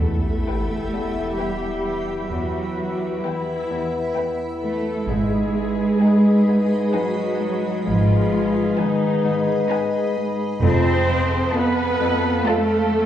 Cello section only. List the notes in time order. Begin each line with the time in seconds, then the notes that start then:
Already playing: A3
1.39 G3
2.32 F#3
3.23 E3
4.62 A3
5.09 G#3
6.93 F#3
7.85 F3
8.78 D#3
10.62 C4
11.54 B3
12.47 A3